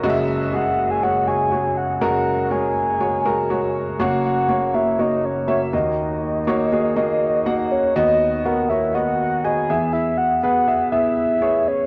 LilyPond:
<<
  \new Staff \with { instrumentName = "Soft synth lead" } { \time 4/4 \key fis \mixolydian \tempo 4 = 121 r4 fis''8. gis''16 fis''8 gis''4 fis''8 | fis''4 gis''2~ gis''8 r8 | fis''8 fis''4 e''8 dis''8 cis''8 cis''8 dis''8~ | dis''2.~ dis''8 cis''8 |
dis''4 fis''8 e''8 fis''4 gis''4 | e''8 fis''8 fis''4 e''4. cis''8 | }
  \new Staff \with { instrumentName = "Grand piano" } { \time 4/4 \key fis \mixolydian <gis fis' dis'' e''>4 <gis fis' gis'>4 <gis fis' cis''>8 <gis fis' cis''>8 <gis fis' cis''>4 | <gis fis' ais'>4 <gis fis' cis''>4 <gis fis' cis''>8 <gis fis' ais'>8 <gis fis' cis''>4 | <ais fis' cis''>4 <ais fis' cis''>8 <ais fis' cis''>8 <ais fis' cis''>4 <ais fis' e''>8 <ais fis' dis''>8~ | <ais fis' dis''>4 <ais fis' cis''>8 <ais fis' gis'>8 <ais fis' dis''>4 <ais fis' fis''>4 |
<b fis' dis''>4 <b fis' ais'>8 <b fis' cis''>8 <b fis' dis''>4 <b fis' dis''>8 <b gis' e''>8~ | <b gis' e''>4 <b gis' b'>8 <b gis' e''>8 <b gis' e''>4 <b gis' cis''>4 | }
  \new Staff \with { instrumentName = "Grand piano" } { \clef bass \time 4/4 \key fis \mixolydian <fis,, fis,>1 | <fis,, fis,>1 | <fis,, fis,>2.~ <fis,, fis,>8 <dis, dis>8~ | <dis, dis>2.~ <dis, dis>8 r8 |
<dis, dis>2.~ <dis, dis>8 <e, e>8~ | <e, e>2.~ <e, e>8 r8 | }
>>